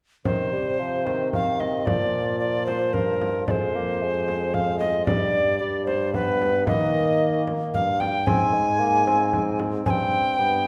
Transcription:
0.25 C3 D#3 C5, frame drum
0.53 G3
0.79 F3
1.06 D#3, frame drum
1.33 D#3 F5, frame drum
1.60 D#5, frame drum
1.86 A#2 F3 D5, frame drum
2.39 D5
2.66 C5, frame drum
2.93 G2 A#4, frame drum
3.21 frame drum
3.47 F2 G#3 C5 D5, frame drum
3.75 A#3
4.02 G#3
4.28 frame drum
4.54 F5, frame drum
4.79 D#5, frame drum
5.06 G2 G3 D5, frame drum
5.59 G2 G3 D5
5.86 C5, frame drum
6.14 B3 B4, frame drum
6.42 frame drum
6.67 D#3 A#3 D#5, frame drum
7.47 frame drum
7.73 G2 F5, frame drum
8.00 G5, frame drum
8.27 G#2 C4 G#5, frame drum
8.54 G#3
8.79 A#3
9.07 C4, frame drum
9.33 C4, frame drum
9.59 frame drum
9.86 G2 C4 G#5, frame drum
9.90 G5
10.39 G2 B3

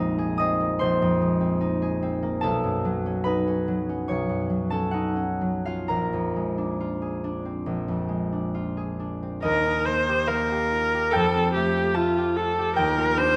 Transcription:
Already playing: A#1 F2 G#3 C4 C5 F5 C6 F6
0.00 D#4
0.19 G#4
0.38 C4 D#5 D#6
0.60 A#3
0.79 A#1 C5 C6
1.02 F2
1.22 G#3
1.41 C4
1.61 D#4
1.82 G#4
2.03 C4
2.23 A#3
2.41 B1 A4 A5
2.64 F#2
2.85 F#3
3.06 C#4
3.24 D#4 B4 B5
3.47 C#4
3.68 F#3
3.89 C#4
4.08 B1 C#5 C#6
4.29 F#2
4.50 F#3
4.70 C#4 A4 A5
4.91 D#4 F#4 F#5
5.16 C#4
5.41 F#3
5.65 C#4 F4 F5
5.88 A#1 A#4 A#5
6.13 F2
6.36 G#3
6.58 D4
6.80 F4
7.02 G#4
7.24 D4
7.45 C4
7.66 A#1
7.88 F2
8.09 G#3
8.32 D4
8.55 F4
8.77 G#4
9.00 D4
9.23 C4
9.42 D#2 A#4 D#5
9.66 D#4
9.86 A#3 C5
10.09 G4
10.27 A#3 A#4 F5
10.52 G4
10.72 F4
10.94 G4
11.11 F2 A4 G5
11.36 C4
11.54 A3 G4
11.77 G4
11.94 A3 F4 A5
12.18 G4
12.36 F4 A4
12.59 G4
12.76 D#2 A#4 G5
12.98 F4
13.17 D4 C5

